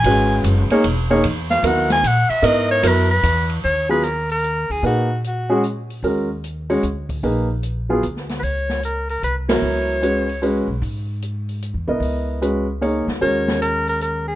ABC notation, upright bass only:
X:1
M:3/4
L:1/8
Q:"Swing" 1/4=150
K:Ebphr
V:1 name="Upright bass" clef=bass
A,,,2 G,,, z F,,,2 | F,,2 E,,2 B,, z | A,,2 G,,2 F,,2 | E,,4- E,, =D,, |
B,,6 | E,,4 =D,,2 | B,,,4 =D,,2 | D,,4 =C,,2 |
D,,4- D,, C,, | A,,4- (3A,, F,, =C,, | D,,4- D,, D,, | E,,6 |]